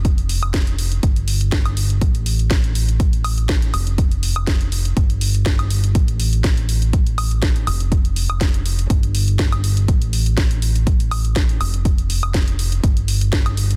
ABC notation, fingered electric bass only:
X:1
M:4/4
L:1/8
Q:"Swing 16ths" 1/4=122
K:Flyd
V:1 name="Fingered electric bass" clef=bass
F,,,4 G,,,4 | z6 z F,,,- | F,,,4 G,,,4 | z6 z F,,,- |
F,,,4 G,,,4 | A,,,6- A,,, F,,,- | F,,,4 G,,,4 |]